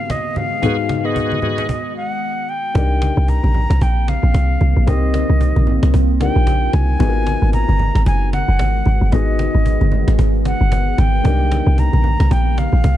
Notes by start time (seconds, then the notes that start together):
Already playing: G#2 D#3 G#3 B3 D#4 F#4 A#4 F5
0.10 D#5, cajon bass, cajon slap, high conga
0.25 cajon slap
0.36 F5, high conga, low conga
0.52 cajon slap
0.62 G#2 B3 D#4 F#4 G#4, cajon bass, low conga
0.78 cajon slap
0.89 cajon slap, high conga
1.04 B3 F#4 G#4 D#5
1.16 cajon bass
1.31 cajon slap, high conga
1.42 B3 F#4 G#4, cajon slap, low conga
1.58 cajon slap
1.69 cajon bass, cajon slap
1.96 F#5
2.49 G5
2.74 C2 D#3 A#3 C4 D4 D#4 G4 A#4, cajon bass, low conga
3.02 cajon slap, high conga
3.17 C2, cajon slap
3.28 A#5, cajon bass
3.44 A#1, high conga
3.54 cajon slap, high conga, low conga
3.70 C2, cajon slap
3.81 A#1 G5, cajon bass
3.97 cajon slap
4.08 F5, cajon slap, high conga
4.23 A#1, cajon slap
4.34 C2, cajon bass, cajon slap, high conga
4.50 cajon slap
4.61 C2, cajon slap, high conga
4.76 A#1, cajon slap
4.87 C2 C4 D#4 F4 G4 A#4 D#5, cajon bass, low conga
5.03 cajon slap
5.14 cajon slap, high conga
5.29 C2, cajon slap
5.41 cajon bass
5.56 A#1, high conga
5.67 cajon slap, high conga, low conga
5.83 C2, cajon slap
5.94 C2, cajon bass
6.09 cajon slap
6.20 D4 D#4 G4 A#4 G5, cajon slap, high conga
6.36 A#1, cajon slap
6.47 cajon bass, cajon slap, high conga
6.62 cajon slap
6.73 C2 G#5, cajon slap, high conga
6.89 cajon slap
6.99 G#1 D#3 G#3 B3 D#4 F#4 G#4, cajon bass, low conga
7.09 A#4
7.27 cajon slap, high conga
7.42 G#1, cajon slap
7.53 A#5, cajon bass
7.69 G1, high conga
7.79 cajon slap, high conga, low conga
7.95 G#1, cajon slap
8.06 F#1 G#5, cajon bass
8.22 cajon slap
8.33 F#5, cajon slap, high conga
8.48 F#1, cajon slap
8.59 G#1, cajon bass, cajon slap, high conga
8.75 cajon slap
8.86 G#1, cajon slap, high conga
9.01 G1, cajon slap
9.11 G#1 B3 D#4 F#4 G#4 D#5, cajon bass, low conga
9.28 cajon slap
9.39 cajon slap, high conga
9.54 G#1, cajon slap
9.66 cajon bass
9.81 G1, high conga
9.92 cajon slap, high conga, low conga
10.08 G#1, cajon slap
10.19 G#1, cajon bass
10.34 cajon slap
10.45 F#5, cajon slap, high conga
10.61 G1, cajon slap
10.72 cajon bass, cajon slap, high conga
10.87 cajon slap
10.98 G#1 G5, cajon slap, high conga
11.24 C2 A#3 C4 D4 D#4 G4 A#4, cajon bass, low conga
11.40 cajon slap
11.51 cajon slap, high conga
11.67 C2, cajon slap
11.78 A#5, cajon bass
11.93 A#1, cajon slap, high conga
12.04 high conga, low conga
12.20 C2, cajon slap
12.31 A#1 G5, cajon bass
12.46 cajon slap
12.57 F5, cajon slap, high conga
12.73 A#1, cajon slap
12.84 C2, cajon bass, cajon slap, high conga